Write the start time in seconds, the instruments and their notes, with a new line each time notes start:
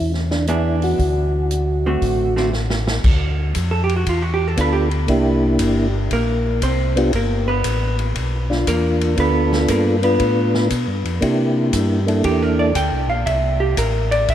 Already playing: tonewheel organ E2 E4
0.14 snare
0.31 tonewheel organ D4, snare
0.47 hollow-body jazz guitar E3 B3 D4 G#4, tonewheel organ E4, closed hi-hat
0.82 tonewheel organ F#4, open hi-hat
0.99 tonewheel organ D2, kick, open hi-hat
1.51 closed hi-hat
1.86 hollow-body jazz guitar D3 A3 C4 F#4
2.02 tonewheel organ A1, kick, open hi-hat
2.36 hollow-body jazz guitar D3 A3 C4 F#4, snare
2.53 snare
2.70 snare
2.87 snare
3.04 tonewheel organ D2, kick, crash
3.55 tonewheel organ F2, kick, hi-hat pedal, ride
3.71 hollow-body jazz guitar A4
3.84 hollow-body jazz guitar G4
3.89 ride
3.96 hollow-body jazz guitar F#4
4.07 tonewheel organ E2, hollow-body jazz guitar F4, kick, ride
4.22 hollow-body jazz guitar F#4
4.34 hollow-body jazz guitar G4
4.47 hollow-body jazz guitar A4
4.57 tonewheel organ D2 B3 D4 F4 A4, hollow-body jazz guitar B4, kick, hi-hat pedal, ride
4.73 hollow-body jazz guitar G4
4.91 ride
5.08 tonewheel organ C2 A#3 D4 E4 G4, kick, ride
5.59 tonewheel organ G1, kick, hi-hat pedal, ride
6.11 tonewheel organ A#1, hollow-body jazz guitar A#3 A#4, kick, ride
6.62 tonewheel organ C2, hollow-body jazz guitar C4 C5, kick, hi-hat pedal, ride
6.96 tonewheel organ B3 D4 F4 G4, ride
7.13 tonewheel organ G1, hollow-body jazz guitar A#3 A#4, kick, ride
7.48 hollow-body jazz guitar B3 B4
7.64 tonewheel organ A1, kick, hi-hat pedal, ride
7.99 ride
8.15 tonewheel organ B1, kick, ride
8.50 tonewheel organ D4 F4, snare
8.67 tonewheel organ E2, hollow-body jazz guitar A#3 A#4, kick, hi-hat pedal, ride
9.01 ride
9.16 tonewheel organ D2 B3 D4 F4 A4, hollow-body jazz guitar B4, kick, ride
9.21 hollow-body jazz guitar B3
9.53 snare
9.68 tonewheel organ G2, hollow-body jazz guitar A#3 A#4, kick, hi-hat pedal, ride
10.02 tonewheel organ B3 D4 F4 B4, hollow-body jazz guitar B3 B4, ride
10.20 tonewheel organ A2, kick, ride
10.55 snare
10.70 tonewheel organ B2, kick, hi-hat pedal, ride
10.88 tonewheel organ G2
11.04 tonewheel organ F2, ride
11.21 tonewheel organ C3 A#3 D4 E4 G4, kick, ride
11.73 tonewheel organ G2, kick, hi-hat pedal, ride
12.07 tonewheel organ A#3 D4 E4 A4, ride
12.24 tonewheel organ E2, hollow-body jazz guitar G4, kick, ride
12.43 hollow-body jazz guitar A#4
12.59 hollow-body jazz guitar D5
12.75 tonewheel organ D2, hollow-body jazz guitar G5, kick, hi-hat pedal, ride
12.92 tonewheel organ C2
13.08 tonewheel organ A#1, hollow-body jazz guitar F5
13.26 tonewheel organ C2, hollow-body jazz guitar E5, kick, ride
13.60 hollow-body jazz guitar G4
13.77 tonewheel organ A1, hollow-body jazz guitar A#4, kick, hi-hat pedal, ride
14.11 hollow-body jazz guitar D5, ride
14.28 tonewheel organ A#1, hollow-body jazz guitar E5, kick, ride